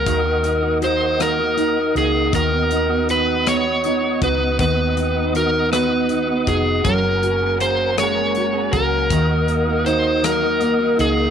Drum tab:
HH |xxxxxx|xxxxxx|xxxxxx|xxxxxx|
SD |---r--|---r--|---r--|---r--|
BD |o-----|o----o|o----o|o----o|

HH |xxxxxx|
SD |--rr--|
BD |o-----|